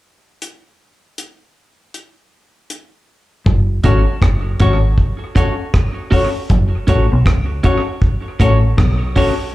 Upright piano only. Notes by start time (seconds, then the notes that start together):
3.84 C#4 F#4 A4 C#5
4.60 C#4 F#4 A4 C#5
5.36 C#4 F#4 A4 C#5
6.12 C#4 F#4 A4 C#5
6.89 C#4 F#4 A4 C#5
7.64 C#4 F#4 A4 C#5
8.40 C#4 F#4 A4 C#5
9.15 C#4 F#4 A4 C#5